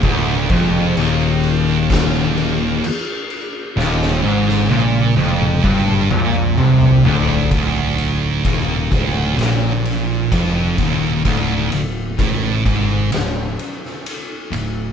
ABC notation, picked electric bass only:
X:1
M:4/4
L:1/8
Q:1/4=64
K:Dphr
V:1 name="Picked electric bass" clef=bass
D,,, F,,, E,,,4 z2 | E,,, ^G,,, B,,, F,,, =G,,, B,,, C,, D,,, | D,,,2 E,,, D,,, B,,,2 F,,, E,,, | D,,, D,,, A,,, ^G,,, z3 D,,, |]